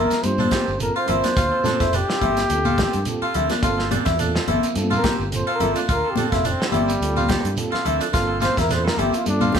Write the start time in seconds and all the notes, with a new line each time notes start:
Already playing: A#3 C4 E4 F4 A4 A#4
0.10 muted fingered electric bass stroke, snare, closed hi-hat, shekere
0.22 G2 A#3 C4 F4 G4 C5, closed hi-hat, high conga, shekere
0.38 C4 D4 F4 A4, high conga, shekere
0.51 A#3 C4 F4 G4 A4, kick, snare, closed hi-hat, high conga
0.67 G1, shekere
0.77 A#3 C4 F4 A4, closed hi-hat, shekere
0.82 A#4
0.95 C4 F4 C5, muted clean electric guitar stroke
1.06 G1 A#3 C4 E4 F4 A4 A#4, closed hi-hat, low conga, shekere
1.23 D4, snare, closed hi-hat, high conga, shekere
1.36 D2 F4, kick, snare, closed hi-hat, shekere
1.51 C4 F4 A4
1.62 A#3 C4 D4 F4 A4, muted fingered electric bass stroke, closed hi-hat, high conga, shekere
1.67 snare
1.80 F1 E4, kick, snare, closed hi-hat, shekere
1.93 D4 G4, closed hi-hat, shekere
2.08 C4 F4 A4, snare
2.21 G1 A#3 C4 E4 F4 A4, kick, closed hi-hat, high conga, low conga, shekere
2.37 snare, closed hi-hat, shekere
2.49 D2 A#3 C4 F4 A4, closed hi-hat, high conga, shekere
2.65 C4 F4 A4, high conga, shekere
2.78 A#3 C4 F4 G4 A4, kick, snare, closed hi-hat, high conga
2.93 G2, closed hi-hat, shekere
3.05 A#3 C4 F4 A4, closed hi-hat, shekere
3.22 C4 F4 A4, muted fingered electric bass stroke
3.34 D2 A#3 C4 E4 F4 A4, closed hi-hat, low conga, shekere
3.48 D4 F4 A#4, snare, closed hi-hat, high conga, shekere
3.62 G1 A#3 C4 F4 A4, kick, closed hi-hat, shekere
3.78 C4 F4 A4, snare
3.91 A#3 C4 D4 F4 A4, closed hi-hat, high conga, shekere
4.05 E2 E4, kick, snare, closed hi-hat, shekere
4.17 A#3 C4 D4 F4 A4, closed hi-hat, shekere
4.35 C4 F4 A4, snare
4.48 G1 A#3 C4 E4 F4 A4, closed hi-hat, high conga, low conga, shekere
4.63 muted fingered electric bass stroke, closed hi-hat, shekere
4.74 G2 A#3 C4 F4 A4, closed hi-hat, high conga, shekere
4.90 C4 F4 A4, high conga, shekere
4.97 A#4
5.03 A#3 C4 F4 G4 A4, kick, snare, closed hi-hat, high conga
5.20 G1, shekere
5.31 A#3 C4 F4 A4, closed hi-hat, shekere
5.35 C5
5.47 C4 F4 A4
5.55 A#4
5.60 G1 A#3 C4 E4 F4 A4, closed hi-hat, low conga, shekere
5.74 D4 F4, closed hi-hat, shekere
5.88 D2 F4 A#4, kick, closed hi-hat, shekere
6.04 C4 F4 A4
6.10 G4
6.15 A#3 C4 D4 F4 A4, muted fingered electric bass stroke, closed hi-hat, high conga, shekere
6.30 F1 E4 F4, kick, snare, closed hi-hat, shekere
6.44 C4 D4, closed hi-hat, shekere
6.60 C4 F4 A4, snare
6.67 G3
6.72 G1 A#3 C4 E4 F4 A4, closed hi-hat, high conga, low conga, shekere
6.88 closed hi-hat, shekere
7.01 D2 A#3 C4 F4 A4, closed hi-hat, shekere
7.16 C4 F4, muted clean electric guitar stroke, high conga, shekere
7.28 A#3 C4 F4 G4 A4, kick, snare, closed hi-hat, high conga
7.44 G2, closed hi-hat, shekere
7.57 A#3 C4 F4 A4, closed hi-hat, shekere
7.71 C4 F4 A4, muted fingered electric bass stroke, snare
7.84 D2 A#3 C4 E4 F4 A4, closed hi-hat, low conga, shekere
7.99 D4 F4 A4, closed hi-hat, shekere
8.12 G1 A#3 C4 F4 A4, kick, snare, closed hi-hat, shekere
8.27 C4 F4 A4
8.40 A#3 C4 F4 A4 C5, snare, closed hi-hat, high conga, shekere
8.56 E2 E4 A#4, kick, snare, closed hi-hat, shekere
8.69 A#3 C4 D4 F4 A4 C5, snare, closed hi-hat, shekere
8.84 C4 F4 A4 A#4, snare
8.96 G1 A#3 C4 E4 F4 G4 A4, closed hi-hat, high conga, low conga, shekere
9.13 F4, muted fingered electric bass stroke, closed hi-hat, shekere
9.25 G2 A#3 C4 D4 F4 A4, closed hi-hat, high conga, shekere
9.40 C4 F4 A4, high conga, shekere
9.52 A#3 C4 F4 G4 A4, kick, snare, closed hi-hat, high conga